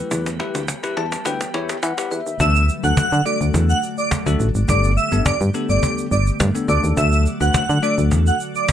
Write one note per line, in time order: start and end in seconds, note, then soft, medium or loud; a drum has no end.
0.00 2.37 E3 medium
0.00 2.37 G3 medium
0.00 2.37 B3 medium
0.00 0.29 E4 medium
0.00 0.29 G4 medium
0.00 2.37 G4 medium
0.00 0.29 B4 loud
0.00 2.37 B4 medium
0.11 0.41 E2 loud
0.11 cajon bass loud
0.11 cajon slap loud
0.11 shaker medium
0.26 cajon slap loud
0.26 shaker soft
0.39 0.62 E4 medium
0.39 0.62 G4 medium
0.39 0.62 B4 medium
0.39 cajon slap loud
0.55 0.74 D2 medium
0.55 cajon slap loud
0.55 shaker soft
0.68 cajon bass loud
0.68 cajon slap loud
0.68 shaker medium
0.83 1.05 E4 medium
0.83 1.05 G4 medium
0.83 1.05 B4 loud
0.83 cajon slap loud
0.83 shaker soft
0.97 1.16 E2 loud
0.97 1.23 A5 medium
0.97 cajon slap loud
1.12 cajon slap loud
1.12 shaker medium
1.25 1.45 D2 loud
1.25 1.41 E4 medium
1.25 1.41 G4 medium
1.25 1.41 B4 medium
1.25 1.79 G5 medium
1.25 cajon bass loud
1.25 cajon slap loud
1.25 shaker medium
1.41 cajon slap loud
1.41 shaker medium
1.54 1.74 E2 medium
1.54 1.76 E4 medium
1.54 1.76 G4 medium
1.54 1.76 C#5 loud
1.54 cajon slap loud
1.69 cajon slap loud
1.69 shaker soft
1.83 1.93 E3 loud
1.83 2.09 F#5 medium
1.83 cajon slap loud
1.83 shaker medium
1.98 2.19 E4 medium
1.98 2.19 G4 medium
1.98 2.19 B4 medium
1.98 cajon slap loud
1.98 shaker medium
2.11 2.22 E2 loud
2.11 2.38 E5 medium
2.11 cajon slap soft
2.11 shaker medium
2.27 2.36 D#2 medium
2.27 cajon slap soft
2.27 shaker medium
2.40 2.70 D2 loud
2.40 4.66 D3 medium
2.40 4.66 F#3 medium
2.40 2.62 A3 medium
2.40 8.72 A3 medium
2.40 2.62 D4 medium
2.40 2.62 F#4 medium
2.40 4.66 F#4 medium
2.40 4.66 A4 loud
2.40 2.62 A4 medium
2.40 2.63 E5 loud
2.40 cajon bass loud
2.40 shaker medium
2.55 shaker medium
2.69 cajon slap soft
2.69 shaker medium
2.83 2.93 D2 medium
2.83 3.05 A3 medium
2.83 3.05 D4 medium
2.83 3.05 F#4 medium
2.83 3.05 A4 medium
2.83 2.95 F#5 medium
2.83 shaker medium
2.97 3.03 D3 medium
2.97 3.20 F#5 medium
2.97 cajon bass loud
2.97 cajon slap loud
2.97 shaker medium
3.12 3.21 D3 loud
3.12 cajon slap soft
3.12 shaker soft
3.26 3.77 A3 medium
3.26 3.77 D4 medium
3.26 3.77 F#4 medium
3.26 3.77 A4 medium
3.26 3.38 D5 medium
3.26 cajon slap soft
3.26 shaker soft
3.41 3.50 D2 medium
3.41 cajon slap soft
3.41 shaker medium
3.54 3.74 E2 loud
3.54 cajon bass loud
3.54 shaker medium
3.69 3.80 F#5 medium
3.69 cajon slap soft
3.69 shaker medium
3.83 cajon slap soft
3.83 shaker medium
3.98 4.09 D5 medium
3.98 cajon slap soft
3.98 shaker soft
4.11 cajon bass loud
4.11 cajon slap loud
4.11 shaker medium
4.26 4.36 D2 loud
4.26 4.48 A3 medium
4.26 4.48 D4 medium
4.26 4.48 F#4 medium
4.26 4.48 A4 loud
4.26 cajon slap soft
4.26 shaker medium
4.40 4.50 A1 loud
4.40 shaker medium
4.55 4.64 G#1 medium
4.55 cajon slap soft
4.55 shaker medium
4.68 4.98 G1 loud
4.68 8.72 D3 medium
4.68 6.67 G3 medium
4.68 4.90 B3 medium
4.68 6.67 B3 medium
4.68 4.91 D4 medium
4.68 4.91 G4 medium
4.68 6.67 G4 loud
4.68 4.91 A4 medium
4.68 4.92 D5 loud
4.68 cajon bass loud
4.68 shaker medium
4.84 shaker medium
4.97 5.20 E5 medium
4.97 cajon slap soft
4.97 shaker medium
5.12 5.21 G1 medium
5.12 5.33 B3 medium
5.12 5.33 D4 medium
5.12 5.34 G4 medium
5.12 5.34 A4 medium
5.12 shaker medium
5.26 5.32 G2 medium
5.26 5.38 D5 medium
5.26 cajon bass loud
5.26 cajon slap loud
5.26 shaker medium
5.41 5.50 G2 loud
5.41 cajon slap soft
5.41 shaker soft
5.54 6.05 B3 medium
5.54 6.05 D4 medium
5.54 6.05 G4 medium
5.54 6.05 A4 medium
5.54 shaker soft
5.69 5.78 G1 medium
5.69 5.93 D5 medium
5.69 cajon slap soft
5.69 shaker medium
5.83 cajon bass loud
5.83 shaker medium
5.98 cajon slap soft
5.98 shaker medium
6.11 6.31 G1 loud
6.11 6.24 D5 medium
6.11 cajon slap soft
6.11 shaker medium
6.27 cajon slap soft
6.27 shaker soft
6.40 6.50 G2 loud
6.40 cajon bass loud
6.40 cajon slap loud
6.40 shaker medium
6.55 6.68 B3 medium
6.55 6.67 D4 medium
6.55 6.69 G4 medium
6.55 6.68 A4 medium
6.55 cajon slap soft
6.55 shaker medium
6.68 6.79 D2 loud
6.68 8.72 F#3 medium
6.68 7.26 A3 medium
6.68 7.26 D4 medium
6.68 8.72 F#4 medium
6.68 7.26 F#4 medium
6.68 8.72 A4 loud
6.68 7.26 A4 medium
6.68 6.81 D5 medium
6.68 cajon slap soft
6.68 shaker medium
6.83 6.93 D#2 medium
6.83 shaker medium
6.97 7.27 D2 loud
6.97 7.21 E5 loud
6.97 cajon bass loud
6.97 shaker medium
7.12 shaker medium
7.26 shaker medium
7.41 7.50 D2 medium
7.41 7.62 A3 medium
7.41 7.62 D4 medium
7.41 7.62 F#4 medium
7.41 7.62 B4 medium
7.41 7.52 F#5 medium
7.41 shaker medium
7.54 7.60 D3 medium
7.54 7.78 F#5 medium
7.54 cajon bass loud
7.54 cajon slap loud
7.54 shaker medium
7.69 7.79 D3 loud
7.69 cajon slap soft
7.69 shaker soft
7.82 8.34 A3 medium
7.82 8.34 D4 medium
7.82 8.34 F#4 medium
7.82 8.34 A4 medium
7.82 7.95 D5 medium
7.82 shaker soft
7.98 8.13 D2 medium
7.98 cajon slap soft
7.98 shaker medium
8.11 8.31 E2 loud
8.11 cajon bass loud
8.11 shaker medium
8.26 8.38 F#5 medium
8.26 cajon slap soft
8.26 shaker medium
8.40 cajon slap soft
8.40 shaker medium
8.55 8.66 D5 medium
8.55 cajon slap soft
8.55 shaker soft
8.68 cajon bass loud
8.68 cajon slap loud
8.68 shaker medium